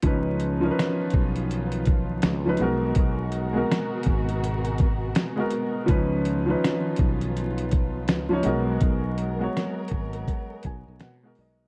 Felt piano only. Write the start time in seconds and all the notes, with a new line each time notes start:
0.03 F3 C#4 D#4 B4
0.61 F3 C#4 D#4 A#4
0.71 B4
2.45 F3 C#4 D#4 B4
2.58 G#3 B3 F#4 A#4
3.53 G#3 B3 F#4 A#4
5.36 G#3 B3 F#4 A#4
5.86 F3 C#4 D#4 B4
6.46 F3 C#4 D#4
6.50 B4
8.29 F3 C#4 D#4
8.33 C#5
8.43 G#3 B3 F#4
8.47 A#4
9.39 G#3 B3 F#4
9.43 C#5
10.65 G#5
11.03 F#5
11.23 G#3 B3 F#4 A#4
11.40 D#5